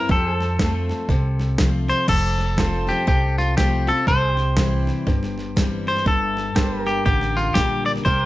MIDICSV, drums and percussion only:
0, 0, Header, 1, 2, 480
1, 0, Start_track
1, 0, Key_signature, -1, "major"
1, 0, Tempo, 497512
1, 99, Time_signature, 4, 2, 24, 8
1, 7965, End_track
2, 0, Start_track
2, 0, Title_t, "Drums"
2, 91, Note_on_c, 9, 36, 108
2, 93, Note_on_c, 9, 38, 31
2, 187, Note_off_c, 9, 36, 0
2, 189, Note_off_c, 9, 38, 0
2, 391, Note_on_c, 9, 38, 34
2, 487, Note_off_c, 9, 38, 0
2, 571, Note_on_c, 9, 36, 73
2, 574, Note_on_c, 9, 38, 97
2, 574, Note_on_c, 9, 44, 75
2, 667, Note_off_c, 9, 36, 0
2, 670, Note_off_c, 9, 38, 0
2, 670, Note_off_c, 9, 44, 0
2, 863, Note_on_c, 9, 38, 32
2, 959, Note_off_c, 9, 38, 0
2, 1050, Note_on_c, 9, 36, 98
2, 1053, Note_on_c, 9, 38, 29
2, 1146, Note_off_c, 9, 36, 0
2, 1149, Note_off_c, 9, 38, 0
2, 1346, Note_on_c, 9, 38, 33
2, 1442, Note_off_c, 9, 38, 0
2, 1527, Note_on_c, 9, 36, 81
2, 1528, Note_on_c, 9, 38, 107
2, 1528, Note_on_c, 9, 44, 82
2, 1624, Note_off_c, 9, 36, 0
2, 1624, Note_off_c, 9, 38, 0
2, 1624, Note_off_c, 9, 44, 0
2, 1820, Note_on_c, 9, 38, 33
2, 1916, Note_off_c, 9, 38, 0
2, 2008, Note_on_c, 9, 36, 98
2, 2009, Note_on_c, 9, 38, 30
2, 2009, Note_on_c, 9, 49, 87
2, 2104, Note_off_c, 9, 36, 0
2, 2106, Note_off_c, 9, 38, 0
2, 2106, Note_off_c, 9, 49, 0
2, 2301, Note_on_c, 9, 38, 31
2, 2398, Note_off_c, 9, 38, 0
2, 2486, Note_on_c, 9, 36, 75
2, 2488, Note_on_c, 9, 38, 101
2, 2488, Note_on_c, 9, 44, 80
2, 2583, Note_off_c, 9, 36, 0
2, 2585, Note_off_c, 9, 38, 0
2, 2585, Note_off_c, 9, 44, 0
2, 2783, Note_on_c, 9, 38, 31
2, 2880, Note_off_c, 9, 38, 0
2, 2967, Note_on_c, 9, 36, 103
2, 2969, Note_on_c, 9, 38, 30
2, 3064, Note_off_c, 9, 36, 0
2, 3066, Note_off_c, 9, 38, 0
2, 3266, Note_on_c, 9, 38, 33
2, 3362, Note_off_c, 9, 38, 0
2, 3448, Note_on_c, 9, 36, 82
2, 3451, Note_on_c, 9, 38, 106
2, 3451, Note_on_c, 9, 44, 77
2, 3544, Note_off_c, 9, 36, 0
2, 3547, Note_off_c, 9, 38, 0
2, 3547, Note_off_c, 9, 44, 0
2, 3740, Note_on_c, 9, 38, 32
2, 3836, Note_off_c, 9, 38, 0
2, 3927, Note_on_c, 9, 36, 99
2, 3928, Note_on_c, 9, 38, 34
2, 4024, Note_off_c, 9, 36, 0
2, 4024, Note_off_c, 9, 38, 0
2, 4218, Note_on_c, 9, 38, 31
2, 4315, Note_off_c, 9, 38, 0
2, 4406, Note_on_c, 9, 38, 107
2, 4406, Note_on_c, 9, 44, 81
2, 4407, Note_on_c, 9, 36, 74
2, 4502, Note_off_c, 9, 38, 0
2, 4502, Note_off_c, 9, 44, 0
2, 4503, Note_off_c, 9, 36, 0
2, 4701, Note_on_c, 9, 38, 31
2, 4798, Note_off_c, 9, 38, 0
2, 4890, Note_on_c, 9, 36, 95
2, 4891, Note_on_c, 9, 38, 31
2, 4986, Note_off_c, 9, 36, 0
2, 4987, Note_off_c, 9, 38, 0
2, 5043, Note_on_c, 9, 38, 30
2, 5140, Note_off_c, 9, 38, 0
2, 5187, Note_on_c, 9, 38, 34
2, 5284, Note_off_c, 9, 38, 0
2, 5371, Note_on_c, 9, 36, 82
2, 5373, Note_on_c, 9, 38, 100
2, 5373, Note_on_c, 9, 44, 81
2, 5467, Note_off_c, 9, 36, 0
2, 5470, Note_off_c, 9, 38, 0
2, 5470, Note_off_c, 9, 44, 0
2, 5666, Note_on_c, 9, 38, 30
2, 5757, Note_off_c, 9, 38, 0
2, 5757, Note_on_c, 9, 38, 30
2, 5848, Note_on_c, 9, 36, 98
2, 5849, Note_off_c, 9, 38, 0
2, 5849, Note_on_c, 9, 38, 33
2, 5945, Note_off_c, 9, 36, 0
2, 5945, Note_off_c, 9, 38, 0
2, 6145, Note_on_c, 9, 38, 32
2, 6241, Note_off_c, 9, 38, 0
2, 6329, Note_on_c, 9, 36, 77
2, 6330, Note_on_c, 9, 38, 96
2, 6330, Note_on_c, 9, 44, 77
2, 6426, Note_off_c, 9, 36, 0
2, 6426, Note_off_c, 9, 38, 0
2, 6426, Note_off_c, 9, 44, 0
2, 6623, Note_on_c, 9, 38, 34
2, 6719, Note_off_c, 9, 38, 0
2, 6810, Note_on_c, 9, 36, 95
2, 6810, Note_on_c, 9, 38, 31
2, 6906, Note_off_c, 9, 38, 0
2, 6907, Note_off_c, 9, 36, 0
2, 6959, Note_on_c, 9, 38, 31
2, 7056, Note_off_c, 9, 38, 0
2, 7107, Note_on_c, 9, 38, 35
2, 7203, Note_off_c, 9, 38, 0
2, 7288, Note_on_c, 9, 38, 106
2, 7288, Note_on_c, 9, 44, 84
2, 7291, Note_on_c, 9, 36, 81
2, 7384, Note_off_c, 9, 38, 0
2, 7384, Note_off_c, 9, 44, 0
2, 7387, Note_off_c, 9, 36, 0
2, 7587, Note_on_c, 9, 38, 32
2, 7676, Note_off_c, 9, 38, 0
2, 7676, Note_on_c, 9, 38, 29
2, 7770, Note_off_c, 9, 38, 0
2, 7770, Note_on_c, 9, 38, 32
2, 7774, Note_on_c, 9, 36, 101
2, 7867, Note_off_c, 9, 38, 0
2, 7871, Note_off_c, 9, 36, 0
2, 7965, End_track
0, 0, End_of_file